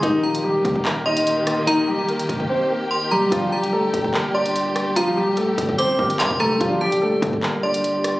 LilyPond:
<<
  \new Staff \with { instrumentName = "Synth bell" } { \time 4/4 \key g \minor \tempo 4 = 146 r8 bes''2 c'''4. | bes''4 r2 c'''8 bes''8 | r8 bes''2 c'''4. | bes''4 r4 d'''4 c'''8 bes''8 |
r8 a''2 c'''4. | }
  \new Staff \with { instrumentName = "Tine electric piano" } { \time 4/4 \key g \minor <ees ees' g' bes'>1~ | <ees ees' g' bes'>1 | <g d' g' d''>1~ | <g d' g' d''>1 |
<g d' g' d''>1 | }
  \new Staff \with { instrumentName = "Grand piano" } { \time 4/4 \key g \minor <ees ees'>8 <f f'>8 <g g'>4 <bes bes'>8 <ees' ees''>4. | <ees ees'>8 <g g'>8 <bes bes'>4 <c' c''>8 <bes bes'>4 <g g'>8 | <f f'>8 <g g'>8 <a a'>4 <bes bes'>8 <d' d''>4. | <f f'>8 <g g'>8 <a a'>4 <c' c''>8 <bes bes'>4 <a a'>8 |
<f f'>8 <g g'>8 <a a'>4 <bes bes'>8 <d' d''>4. | }
  \new Staff \with { instrumentName = "String section" } { \clef bass \time 4/4 \key g \minor << { g'1~ | g'1~ | g'1~ | g'1~ |
g'1 | } \\ { <ees bes>1~ | <ees bes>1 | <bes, g>1~ | <bes, g>1~ |
<bes, g>1 | } >> }
  \new Staff \with { instrumentName = "808-style bass" } { \clef bass \time 4/4 \key g \minor ees,,4. ees,16 ees,,2~ ees,,16~ | ees,,8. r8. ees,,16 ees,,16 r2 | g,,4. g,,16 g,,2~ g,,16~ | g,,8. r8. g,,16 g,,8. g,,8 g,16 f,,8. |
g,,4. g,16 g,,2~ g,,16 | }
  \new DrumStaff \with { instrumentName = "Drums" } \drummode { \time 4/4 <hh bd>8. hh16 r8 <hh bd>16 bd16 hc8. hh16 hh8 <hh ss>8 | hh4 hh16 hh16 <hh bd>16 bd16 r4 r4 | <hh bd>8. hh16 r8 <hh bd>16 bd16 hc8. hh16 hh8 <hh ss>8 | hh4 hh8 <hh bd>16 bd16 hh8 bd16 hh16 <hc hh>16 bd16 ss8 |
<hh bd>8. hh16 r8 <hh bd>16 bd16 hc8. hh16 hh8 <hh ss>8 | }
>>